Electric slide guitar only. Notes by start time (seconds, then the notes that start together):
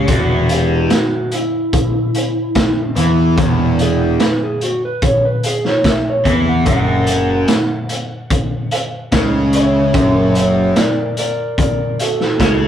0.10 F#4
0.52 G4
0.93 F#4
1.34 E4
3.82 G#4
4.23 B4
4.44 G#4
4.63 F#4
4.85 B4
5.04 C#5
5.25 B4
5.46 G#4
5.67 C#5
5.89 E5
6.10 C#5
6.30 B4
6.49 F#5
6.69 F#5
9.55 C#5 E5
9.96 C#5 E5
10.37 C#5 E5
10.77 A#4 D5
11.19 A#4 D5
11.60 A#4 D5
12.01 F#4 A4
12.41 F#4 A4